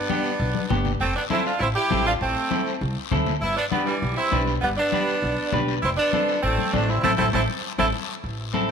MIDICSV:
0, 0, Header, 1, 5, 480
1, 0, Start_track
1, 0, Key_signature, 0, "minor"
1, 0, Tempo, 301659
1, 1593, Time_signature, 4, 2, 24, 8
1, 13861, End_track
2, 0, Start_track
2, 0, Title_t, "Clean electric guitar"
2, 0, Program_c, 0, 27
2, 145, Note_on_c, 0, 59, 66
2, 153, Note_on_c, 0, 62, 68
2, 160, Note_on_c, 0, 67, 74
2, 484, Note_off_c, 0, 59, 0
2, 488, Note_off_c, 0, 62, 0
2, 492, Note_off_c, 0, 67, 0
2, 1107, Note_on_c, 0, 59, 76
2, 1119, Note_on_c, 0, 62, 69
2, 1120, Note_on_c, 0, 67, 94
2, 1448, Note_off_c, 0, 59, 0
2, 1449, Note_off_c, 0, 62, 0
2, 1452, Note_off_c, 0, 67, 0
2, 2065, Note_on_c, 0, 60, 71
2, 2072, Note_on_c, 0, 65, 65
2, 2081, Note_on_c, 0, 69, 84
2, 2405, Note_off_c, 0, 60, 0
2, 2409, Note_off_c, 0, 65, 0
2, 2413, Note_off_c, 0, 69, 0
2, 3032, Note_on_c, 0, 60, 78
2, 3043, Note_on_c, 0, 65, 57
2, 3045, Note_on_c, 0, 69, 78
2, 3370, Note_off_c, 0, 60, 0
2, 3372, Note_off_c, 0, 65, 0
2, 3376, Note_off_c, 0, 69, 0
2, 3986, Note_on_c, 0, 60, 68
2, 3990, Note_on_c, 0, 64, 62
2, 4005, Note_on_c, 0, 69, 65
2, 4326, Note_off_c, 0, 60, 0
2, 4330, Note_off_c, 0, 64, 0
2, 4332, Note_off_c, 0, 69, 0
2, 4952, Note_on_c, 0, 60, 82
2, 4957, Note_on_c, 0, 64, 72
2, 4967, Note_on_c, 0, 69, 90
2, 5289, Note_off_c, 0, 60, 0
2, 5293, Note_off_c, 0, 64, 0
2, 5295, Note_off_c, 0, 69, 0
2, 5909, Note_on_c, 0, 62, 75
2, 5921, Note_on_c, 0, 67, 57
2, 5922, Note_on_c, 0, 71, 75
2, 6248, Note_off_c, 0, 62, 0
2, 6251, Note_off_c, 0, 67, 0
2, 6255, Note_off_c, 0, 71, 0
2, 6868, Note_on_c, 0, 62, 73
2, 6878, Note_on_c, 0, 67, 53
2, 6883, Note_on_c, 0, 71, 76
2, 7208, Note_off_c, 0, 62, 0
2, 7209, Note_off_c, 0, 67, 0
2, 7215, Note_off_c, 0, 71, 0
2, 7837, Note_on_c, 0, 62, 69
2, 7843, Note_on_c, 0, 67, 73
2, 7858, Note_on_c, 0, 71, 66
2, 8171, Note_off_c, 0, 62, 0
2, 8176, Note_off_c, 0, 67, 0
2, 8179, Note_off_c, 0, 71, 0
2, 8790, Note_on_c, 0, 62, 82
2, 8794, Note_on_c, 0, 67, 74
2, 8809, Note_on_c, 0, 71, 79
2, 9128, Note_off_c, 0, 62, 0
2, 9131, Note_off_c, 0, 67, 0
2, 9134, Note_off_c, 0, 71, 0
2, 9753, Note_on_c, 0, 60, 76
2, 9759, Note_on_c, 0, 65, 66
2, 9768, Note_on_c, 0, 69, 75
2, 10088, Note_off_c, 0, 60, 0
2, 10092, Note_off_c, 0, 65, 0
2, 10096, Note_off_c, 0, 69, 0
2, 10711, Note_on_c, 0, 60, 75
2, 10717, Note_on_c, 0, 65, 66
2, 10728, Note_on_c, 0, 69, 73
2, 11047, Note_off_c, 0, 60, 0
2, 11052, Note_off_c, 0, 65, 0
2, 11052, Note_off_c, 0, 69, 0
2, 11188, Note_on_c, 0, 60, 93
2, 11198, Note_on_c, 0, 64, 101
2, 11203, Note_on_c, 0, 69, 83
2, 11346, Note_off_c, 0, 60, 0
2, 11346, Note_off_c, 0, 69, 0
2, 11347, Note_off_c, 0, 64, 0
2, 11428, Note_on_c, 0, 69, 90
2, 11433, Note_on_c, 0, 64, 85
2, 11443, Note_on_c, 0, 60, 79
2, 11584, Note_off_c, 0, 64, 0
2, 11584, Note_off_c, 0, 69, 0
2, 11585, Note_off_c, 0, 60, 0
2, 11670, Note_on_c, 0, 60, 94
2, 11677, Note_on_c, 0, 64, 83
2, 11688, Note_on_c, 0, 69, 82
2, 11826, Note_off_c, 0, 64, 0
2, 11827, Note_off_c, 0, 60, 0
2, 11829, Note_off_c, 0, 69, 0
2, 12394, Note_on_c, 0, 69, 94
2, 12401, Note_on_c, 0, 64, 88
2, 12407, Note_on_c, 0, 60, 82
2, 12548, Note_off_c, 0, 60, 0
2, 12548, Note_off_c, 0, 64, 0
2, 12548, Note_off_c, 0, 69, 0
2, 13579, Note_on_c, 0, 60, 86
2, 13587, Note_on_c, 0, 64, 76
2, 13594, Note_on_c, 0, 69, 93
2, 13861, Note_off_c, 0, 60, 0
2, 13861, Note_off_c, 0, 64, 0
2, 13861, Note_off_c, 0, 69, 0
2, 13861, End_track
3, 0, Start_track
3, 0, Title_t, "Saxophone section"
3, 0, Program_c, 1, 65
3, 0, Note_on_c, 1, 59, 77
3, 0, Note_on_c, 1, 62, 99
3, 1289, Note_off_c, 1, 62, 0
3, 1295, Note_off_c, 1, 59, 0
3, 1597, Note_on_c, 1, 60, 96
3, 1611, Note_on_c, 1, 57, 75
3, 1818, Note_off_c, 1, 60, 0
3, 1826, Note_off_c, 1, 57, 0
3, 1840, Note_on_c, 1, 62, 84
3, 1853, Note_on_c, 1, 59, 63
3, 1947, Note_off_c, 1, 62, 0
3, 1956, Note_off_c, 1, 59, 0
3, 2083, Note_on_c, 1, 64, 94
3, 2090, Note_on_c, 1, 60, 70
3, 2302, Note_off_c, 1, 64, 0
3, 2305, Note_off_c, 1, 60, 0
3, 2314, Note_on_c, 1, 65, 89
3, 2319, Note_on_c, 1, 62, 70
3, 2537, Note_off_c, 1, 65, 0
3, 2539, Note_off_c, 1, 62, 0
3, 2544, Note_on_c, 1, 64, 96
3, 2556, Note_on_c, 1, 60, 82
3, 2654, Note_off_c, 1, 64, 0
3, 2664, Note_off_c, 1, 60, 0
3, 2790, Note_on_c, 1, 67, 102
3, 2798, Note_on_c, 1, 64, 85
3, 3238, Note_off_c, 1, 67, 0
3, 3242, Note_off_c, 1, 64, 0
3, 3278, Note_on_c, 1, 65, 100
3, 3280, Note_on_c, 1, 62, 71
3, 3385, Note_off_c, 1, 65, 0
3, 3387, Note_off_c, 1, 62, 0
3, 3514, Note_on_c, 1, 60, 100
3, 3520, Note_on_c, 1, 57, 70
3, 4411, Note_off_c, 1, 60, 0
3, 4414, Note_off_c, 1, 57, 0
3, 5435, Note_on_c, 1, 64, 106
3, 5446, Note_on_c, 1, 59, 75
3, 5658, Note_off_c, 1, 64, 0
3, 5664, Note_off_c, 1, 59, 0
3, 5681, Note_on_c, 1, 62, 98
3, 5695, Note_on_c, 1, 59, 70
3, 5787, Note_off_c, 1, 62, 0
3, 5799, Note_off_c, 1, 59, 0
3, 5911, Note_on_c, 1, 59, 87
3, 5929, Note_on_c, 1, 55, 71
3, 6128, Note_off_c, 1, 55, 0
3, 6136, Note_off_c, 1, 59, 0
3, 6147, Note_on_c, 1, 55, 90
3, 6160, Note_on_c, 1, 52, 72
3, 6597, Note_off_c, 1, 55, 0
3, 6604, Note_off_c, 1, 52, 0
3, 6623, Note_on_c, 1, 64, 106
3, 6640, Note_on_c, 1, 60, 78
3, 7075, Note_off_c, 1, 64, 0
3, 7084, Note_off_c, 1, 60, 0
3, 7343, Note_on_c, 1, 59, 96
3, 7365, Note_on_c, 1, 55, 74
3, 7454, Note_off_c, 1, 59, 0
3, 7471, Note_off_c, 1, 55, 0
3, 7585, Note_on_c, 1, 62, 97
3, 7607, Note_on_c, 1, 59, 80
3, 8965, Note_off_c, 1, 62, 0
3, 8976, Note_off_c, 1, 59, 0
3, 9261, Note_on_c, 1, 64, 97
3, 9284, Note_on_c, 1, 60, 85
3, 9371, Note_off_c, 1, 64, 0
3, 9389, Note_off_c, 1, 60, 0
3, 9506, Note_on_c, 1, 62, 102
3, 9531, Note_on_c, 1, 59, 74
3, 10178, Note_off_c, 1, 62, 0
3, 10191, Note_off_c, 1, 59, 0
3, 10219, Note_on_c, 1, 60, 97
3, 10250, Note_on_c, 1, 57, 80
3, 10671, Note_off_c, 1, 60, 0
3, 10688, Note_off_c, 1, 57, 0
3, 10713, Note_on_c, 1, 62, 100
3, 10737, Note_on_c, 1, 57, 74
3, 10950, Note_on_c, 1, 64, 89
3, 10952, Note_off_c, 1, 62, 0
3, 10964, Note_off_c, 1, 57, 0
3, 10968, Note_on_c, 1, 60, 81
3, 11175, Note_off_c, 1, 64, 0
3, 11178, Note_off_c, 1, 60, 0
3, 11194, Note_on_c, 1, 64, 95
3, 11196, Note_on_c, 1, 57, 93
3, 11197, Note_on_c, 1, 60, 101
3, 11308, Note_off_c, 1, 64, 0
3, 11310, Note_off_c, 1, 57, 0
3, 11311, Note_off_c, 1, 60, 0
3, 11423, Note_on_c, 1, 60, 92
3, 11426, Note_on_c, 1, 64, 91
3, 11428, Note_on_c, 1, 57, 91
3, 11540, Note_off_c, 1, 60, 0
3, 11542, Note_off_c, 1, 64, 0
3, 11544, Note_off_c, 1, 57, 0
3, 11669, Note_on_c, 1, 57, 92
3, 11669, Note_on_c, 1, 60, 97
3, 11670, Note_on_c, 1, 64, 92
3, 11784, Note_off_c, 1, 57, 0
3, 11785, Note_off_c, 1, 60, 0
3, 11785, Note_off_c, 1, 64, 0
3, 12380, Note_on_c, 1, 64, 91
3, 12382, Note_on_c, 1, 57, 82
3, 12383, Note_on_c, 1, 60, 92
3, 12498, Note_off_c, 1, 64, 0
3, 12499, Note_off_c, 1, 57, 0
3, 12500, Note_off_c, 1, 60, 0
3, 13861, End_track
4, 0, Start_track
4, 0, Title_t, "Upright bass"
4, 0, Program_c, 2, 32
4, 630, Note_on_c, 2, 35, 99
4, 823, Note_off_c, 2, 35, 0
4, 1113, Note_on_c, 2, 31, 90
4, 1497, Note_off_c, 2, 31, 0
4, 1594, Note_on_c, 2, 29, 86
4, 1785, Note_off_c, 2, 29, 0
4, 2552, Note_on_c, 2, 33, 98
4, 2745, Note_off_c, 2, 33, 0
4, 3036, Note_on_c, 2, 33, 94
4, 3419, Note_off_c, 2, 33, 0
4, 3516, Note_on_c, 2, 33, 94
4, 3707, Note_off_c, 2, 33, 0
4, 4476, Note_on_c, 2, 36, 94
4, 4667, Note_off_c, 2, 36, 0
4, 4955, Note_on_c, 2, 38, 93
4, 5339, Note_off_c, 2, 38, 0
4, 5437, Note_on_c, 2, 31, 83
4, 5628, Note_off_c, 2, 31, 0
4, 6399, Note_on_c, 2, 35, 92
4, 6589, Note_off_c, 2, 35, 0
4, 6876, Note_on_c, 2, 35, 97
4, 7259, Note_off_c, 2, 35, 0
4, 7358, Note_on_c, 2, 31, 83
4, 7548, Note_off_c, 2, 31, 0
4, 8312, Note_on_c, 2, 35, 92
4, 8505, Note_off_c, 2, 35, 0
4, 8797, Note_on_c, 2, 35, 92
4, 9180, Note_off_c, 2, 35, 0
4, 9276, Note_on_c, 2, 29, 92
4, 9467, Note_off_c, 2, 29, 0
4, 10232, Note_on_c, 2, 33, 101
4, 10424, Note_off_c, 2, 33, 0
4, 10711, Note_on_c, 2, 33, 101
4, 11095, Note_off_c, 2, 33, 0
4, 11190, Note_on_c, 2, 33, 90
4, 11369, Note_off_c, 2, 33, 0
4, 11428, Note_on_c, 2, 33, 101
4, 11608, Note_off_c, 2, 33, 0
4, 11665, Note_on_c, 2, 33, 94
4, 11846, Note_off_c, 2, 33, 0
4, 12385, Note_on_c, 2, 33, 94
4, 12566, Note_off_c, 2, 33, 0
4, 13105, Note_on_c, 2, 33, 82
4, 13861, Note_off_c, 2, 33, 0
4, 13861, End_track
5, 0, Start_track
5, 0, Title_t, "Drums"
5, 151, Note_on_c, 9, 73, 70
5, 154, Note_on_c, 9, 63, 75
5, 310, Note_off_c, 9, 73, 0
5, 313, Note_off_c, 9, 63, 0
5, 389, Note_on_c, 9, 73, 65
5, 548, Note_off_c, 9, 73, 0
5, 631, Note_on_c, 9, 74, 66
5, 790, Note_off_c, 9, 74, 0
5, 873, Note_on_c, 9, 63, 69
5, 1032, Note_off_c, 9, 63, 0
5, 1111, Note_on_c, 9, 73, 65
5, 1119, Note_on_c, 9, 63, 84
5, 1119, Note_on_c, 9, 64, 89
5, 1270, Note_off_c, 9, 73, 0
5, 1278, Note_off_c, 9, 63, 0
5, 1278, Note_off_c, 9, 64, 0
5, 1352, Note_on_c, 9, 73, 64
5, 1356, Note_on_c, 9, 64, 75
5, 1511, Note_off_c, 9, 73, 0
5, 1515, Note_off_c, 9, 64, 0
5, 1589, Note_on_c, 9, 74, 66
5, 1749, Note_off_c, 9, 74, 0
5, 2070, Note_on_c, 9, 73, 75
5, 2072, Note_on_c, 9, 63, 82
5, 2229, Note_off_c, 9, 73, 0
5, 2231, Note_off_c, 9, 63, 0
5, 2312, Note_on_c, 9, 73, 71
5, 2471, Note_off_c, 9, 73, 0
5, 2548, Note_on_c, 9, 74, 69
5, 2707, Note_off_c, 9, 74, 0
5, 3029, Note_on_c, 9, 73, 67
5, 3033, Note_on_c, 9, 63, 81
5, 3188, Note_off_c, 9, 73, 0
5, 3192, Note_off_c, 9, 63, 0
5, 3271, Note_on_c, 9, 73, 64
5, 3430, Note_off_c, 9, 73, 0
5, 3514, Note_on_c, 9, 74, 69
5, 3673, Note_off_c, 9, 74, 0
5, 3991, Note_on_c, 9, 63, 75
5, 3994, Note_on_c, 9, 73, 68
5, 4150, Note_off_c, 9, 63, 0
5, 4153, Note_off_c, 9, 73, 0
5, 4238, Note_on_c, 9, 73, 69
5, 4397, Note_off_c, 9, 73, 0
5, 4476, Note_on_c, 9, 74, 67
5, 4635, Note_off_c, 9, 74, 0
5, 4957, Note_on_c, 9, 63, 85
5, 4957, Note_on_c, 9, 64, 81
5, 4958, Note_on_c, 9, 73, 73
5, 5116, Note_off_c, 9, 63, 0
5, 5116, Note_off_c, 9, 64, 0
5, 5117, Note_off_c, 9, 73, 0
5, 5194, Note_on_c, 9, 73, 64
5, 5195, Note_on_c, 9, 64, 74
5, 5353, Note_off_c, 9, 73, 0
5, 5354, Note_off_c, 9, 64, 0
5, 5435, Note_on_c, 9, 74, 66
5, 5594, Note_off_c, 9, 74, 0
5, 5913, Note_on_c, 9, 63, 86
5, 5917, Note_on_c, 9, 73, 65
5, 6072, Note_off_c, 9, 63, 0
5, 6076, Note_off_c, 9, 73, 0
5, 6160, Note_on_c, 9, 73, 67
5, 6320, Note_off_c, 9, 73, 0
5, 6405, Note_on_c, 9, 74, 66
5, 6564, Note_off_c, 9, 74, 0
5, 6870, Note_on_c, 9, 63, 79
5, 6879, Note_on_c, 9, 73, 69
5, 7029, Note_off_c, 9, 63, 0
5, 7038, Note_off_c, 9, 73, 0
5, 7118, Note_on_c, 9, 73, 62
5, 7277, Note_off_c, 9, 73, 0
5, 7351, Note_on_c, 9, 74, 67
5, 7510, Note_off_c, 9, 74, 0
5, 7833, Note_on_c, 9, 63, 76
5, 7838, Note_on_c, 9, 73, 72
5, 7992, Note_off_c, 9, 63, 0
5, 7997, Note_off_c, 9, 73, 0
5, 8077, Note_on_c, 9, 73, 71
5, 8236, Note_off_c, 9, 73, 0
5, 8320, Note_on_c, 9, 74, 65
5, 8479, Note_off_c, 9, 74, 0
5, 8790, Note_on_c, 9, 63, 87
5, 8790, Note_on_c, 9, 64, 81
5, 8795, Note_on_c, 9, 73, 66
5, 8949, Note_off_c, 9, 63, 0
5, 8949, Note_off_c, 9, 64, 0
5, 8954, Note_off_c, 9, 73, 0
5, 9043, Note_on_c, 9, 73, 69
5, 9202, Note_off_c, 9, 73, 0
5, 9274, Note_on_c, 9, 74, 66
5, 9434, Note_off_c, 9, 74, 0
5, 9752, Note_on_c, 9, 63, 81
5, 9758, Note_on_c, 9, 73, 66
5, 9911, Note_off_c, 9, 63, 0
5, 9917, Note_off_c, 9, 73, 0
5, 9999, Note_on_c, 9, 73, 72
5, 10158, Note_off_c, 9, 73, 0
5, 10239, Note_on_c, 9, 74, 66
5, 10398, Note_off_c, 9, 74, 0
5, 10473, Note_on_c, 9, 63, 72
5, 10633, Note_off_c, 9, 63, 0
5, 10717, Note_on_c, 9, 73, 66
5, 10721, Note_on_c, 9, 63, 80
5, 10876, Note_off_c, 9, 73, 0
5, 10880, Note_off_c, 9, 63, 0
5, 10956, Note_on_c, 9, 73, 73
5, 11115, Note_off_c, 9, 73, 0
5, 11196, Note_on_c, 9, 74, 93
5, 11201, Note_on_c, 9, 63, 103
5, 11355, Note_off_c, 9, 74, 0
5, 11360, Note_off_c, 9, 63, 0
5, 11427, Note_on_c, 9, 74, 86
5, 11438, Note_on_c, 9, 63, 97
5, 11586, Note_off_c, 9, 74, 0
5, 11597, Note_off_c, 9, 63, 0
5, 11675, Note_on_c, 9, 74, 94
5, 11677, Note_on_c, 9, 63, 97
5, 11834, Note_off_c, 9, 74, 0
5, 11836, Note_off_c, 9, 63, 0
5, 12390, Note_on_c, 9, 74, 93
5, 12392, Note_on_c, 9, 63, 93
5, 12549, Note_off_c, 9, 74, 0
5, 12551, Note_off_c, 9, 63, 0
5, 13109, Note_on_c, 9, 74, 69
5, 13268, Note_off_c, 9, 74, 0
5, 13585, Note_on_c, 9, 63, 74
5, 13586, Note_on_c, 9, 73, 71
5, 13744, Note_off_c, 9, 63, 0
5, 13745, Note_off_c, 9, 73, 0
5, 13861, End_track
0, 0, End_of_file